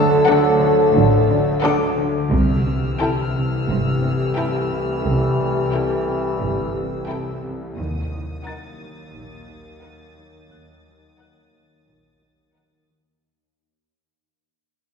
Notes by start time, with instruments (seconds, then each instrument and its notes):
Already playing: cello section D2 D3, double bass section D2, synth drone D2, trombone section D3 F#3, french horn section A3 A4, violin section F#5 A5 E6, grand piano A5
0.28 cello section D3, viola section D4, violin section A4 F#5
0.62 cello section D3
0.86 violin section F5
0.96 double bass section A1, cello section A2 D3
1.30 cello section D4
1.64 cello section D3, viola section D4, violin section A4 F#5, grand piano D6
1.98 cello section D3
2.32 cello section C2 C3, synth drone C2, double bass section C2, trombone section E3 G3, french horn section A3 G4, violin section E6 F6
2.67 cello section C3
3.01 cello section C3, viola section E4, violin section A4 G5
3.35 cello section C3
3.69 double bass section G1, cello section G2 C3
4.03 cello section C4
4.37 cello section C3, viola section E4, violin section A4 G5
4.71 cello section C3
5.05 cello section C2 C3, double bass section C2
5.40 cello section C3
5.73 cello section C3, viola section E4, violin section A4 G5
6.07 cello section C3
6.41 double bass section G1, cello section G2 C3
6.76 cello section C4
7.10 cello section C3, viola section E4, violin section A4 G5
7.44 cello section C3
7.78 double bass section D#2, cello section D#2 D#3, synth drone D#2, trombone section D#3 F#3, french horn section A#3 A#4, violin section D#6
8.13 cello section D#3
8.46 cello section D#3, viola section D#4, violin section A#4 F#5 A6, grand piano A6
8.82 cello section D#3
9.14 double bass section A#1, cello section A#2 D#3
9.49 cello section D#4
9.82 cello section D#3, viola section D#4, violin section A#4 F#5
10.18 cello section D#3
10.51 double bass section D#2, cello section D#2 D#3, grand piano F#6
10.86 cello section D#3
11.19 cello section D#3, viola section D#4, violin section A#4 F#5, grand piano F#6
11.54 cello section D#3
11.87 double bass section A#1, cello section A#2 D#3
12.22 cello section D#4
12.55 cello section D#3, viola section D#4, violin section A#4 F#5
12.90 cello section D#3